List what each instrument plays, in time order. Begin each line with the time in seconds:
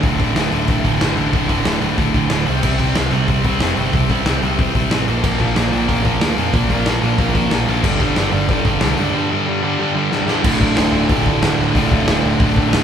0.03 picked electric bass D1, distorted electric guitar D2 A2 D3, kick, open hi-hat
0.19 picked electric bass D1, distorted electric guitar D2 A2 D3, kick, open hi-hat
0.35 picked electric bass D1, distorted electric guitar D2 A2 D3, snare, open hi-hat
0.51 picked electric bass D1, distorted electric guitar D2 A2 D3, open hi-hat
0.68 picked electric bass D1, distorted electric guitar D2 A2 D3, kick, open hi-hat
0.84 picked electric bass D1, distorted electric guitar D2 A2 D3, kick, open hi-hat
1.00 picked electric bass G1, distorted electric guitar D2 A2 D3, snare, open hi-hat
1.16 picked electric bass A1, distorted electric guitar D2 A2 D3, open hi-hat
1.33 picked electric bass D1, distorted electric guitar D2 A2 D3, kick, open hi-hat
1.48 picked electric bass D1, distorted electric guitar D2 A2 D3, kick, open hi-hat
1.65 picked electric bass D1, distorted electric guitar D2 A2 D3, snare, open hi-hat
1.81 picked electric bass D1, distorted electric guitar D2 A2 D3, open hi-hat
1.97 picked electric bass D1, distorted electric guitar D2 A2 D3, kick, open hi-hat
2.14 picked electric bass D2, distorted electric guitar D2 A2 D3, kick, open hi-hat
2.30 picked electric bass D1, distorted electric guitar D2 A2 D3, snare, open hi-hat
2.46 picked electric bass C2, distorted electric guitar C3 G3 C4, open hi-hat
2.63 picked electric bass C2, distorted electric guitar C3 G3 C4, kick, crash
2.79 picked electric bass C2, distorted electric guitar C3 G3 C4, kick, open hi-hat
2.95 picked electric bass C2, distorted electric guitar C3 G3 C4, snare, open hi-hat
3.11 picked electric bass C2, distorted electric guitar C3 G3 C4, open hi-hat
3.28 picked electric bass C2, distorted electric guitar C3 G3 C4, kick, open hi-hat
3.44 picked electric bass C2, distorted electric guitar C3 G3 C4, kick, open hi-hat
3.60 picked electric bass F1, distorted electric guitar C3 G3 C4, snare, open hi-hat
3.77 picked electric bass G1, distorted electric guitar C3 G3 C4, open hi-hat
3.93 picked electric bass C2, distorted electric guitar C3 G3 C4, kick, open hi-hat
4.09 picked electric bass C2, distorted electric guitar C3 G3 C4, kick, open hi-hat
4.25 picked electric bass C2, distorted electric guitar C3 G3 C4, snare, open hi-hat
4.42 picked electric bass C2, distorted electric guitar C3 G3 C4, open hi-hat
4.59 picked electric bass C2, distorted electric guitar C3 G3 C4, kick, open hi-hat
4.75 picked electric bass C2, distorted electric guitar C3 G3 C4, kick, open hi-hat
4.91 picked electric bass A1, distorted electric guitar C3 G3 C4, snare, open hi-hat
5.08 picked electric bass A#1, distorted electric guitar A#2 F3 A#3, open hi-hat
5.24 picked electric bass A#1, distorted electric guitar A#2 F3 A#3, kick, crash
5.40 picked electric bass A#1, distorted electric guitar A#2 F3 A#3, kick, open hi-hat
5.56 picked electric bass A#1, distorted electric guitar A#2 F3 A#3, snare, open hi-hat
5.72 picked electric bass A#1, distorted electric guitar A#2 F3 A#3, open hi-hat
5.88 picked electric bass A#1, distorted electric guitar A#2 F3 A#3, kick, open hi-hat
6.05 picked electric bass A#1, distorted electric guitar A#2 F3 A#3, kick, open hi-hat
6.21 picked electric bass D2, distorted electric guitar A#2 F3 A#3, snare, open hi-hat
6.37 picked electric bass F2, distorted electric guitar A#2 F3 A#3, open hi-hat
6.54 picked electric bass A#1, distorted electric guitar A#2 F3 A#3, kick, open hi-hat
6.70 picked electric bass A#1, distorted electric guitar A#2 F3 A#3, kick, open hi-hat
6.86 picked electric bass A#1, distorted electric guitar A#2 F3 A#3, snare, open hi-hat
7.02 picked electric bass A#1, distorted electric guitar A#2 F3 A#3, open hi-hat
7.18 picked electric bass A#1, distorted electric guitar A#2 F3 A#3, kick, open hi-hat
7.35 distorted electric guitar A#2 F3 A#3, picked electric bass A#2, kick, open hi-hat
7.50 picked electric bass A#1, distorted electric guitar A#2 F3 A#3, snare, open hi-hat
7.68 picked electric bass A#1, distorted electric guitar A#2 F3 A#3, open hi-hat
7.83 picked electric bass G1, distorted electric guitar G2 D3 G3, kick, crash
8.00 picked electric bass G1, distorted electric guitar G2 D3 G3, kick, open hi-hat
8.16 picked electric bass G1, distorted electric guitar G2 D3 G3, snare, open hi-hat
8.32 picked electric bass G1, distorted electric guitar G2 D3 G3, open hi-hat
8.48 picked electric bass G1, distorted electric guitar G2 D3 G3, kick, open hi-hat
8.65 picked electric bass G1, distorted electric guitar G2 D3 G3, kick, open hi-hat
8.81 picked electric bass C2, distorted electric guitar G2 D3 G3, snare, open hi-hat
8.97 picked electric bass C#2, distorted electric guitar G2 D3 G3, open hi-hat
9.14 distorted electric guitar G2 D3 G3
9.30 distorted electric guitar G2 D3 G3
9.47 distorted electric guitar G2 D3 G3
9.63 distorted electric guitar G2 D3 G3
9.78 distorted electric guitar G2 D3 G3
9.94 distorted electric guitar G2 D3 G3
10.11 distorted electric guitar G2 D3 G3, snare
10.27 distorted electric guitar G2 D3 G3, snare
10.43 picked electric bass D1, distorted electric guitar D2 A2 D3 A3 F4, kick, crash
10.61 picked electric bass D1, kick
10.77 picked electric bass D1, snare, open hi-hat
10.93 picked electric bass D1
11.08 picked electric bass D1, distorted electric guitar D2 A2 D3, kick, open hi-hat
11.26 kick
11.42 picked electric bass D1, snare, open hi-hat
11.59 picked electric bass D1
11.74 picked electric bass D1, distorted electric guitar D2 A2 D3 A3 F4, kick, open hi-hat
11.91 picked electric bass D1, kick
12.08 picked electric bass D1, snare, open hi-hat
12.24 picked electric bass D1
12.39 picked electric bass D1, distorted electric guitar D2 A2 D3, kick, open hi-hat
12.56 picked electric bass D1, kick
12.73 picked electric bass D1, snare, open hi-hat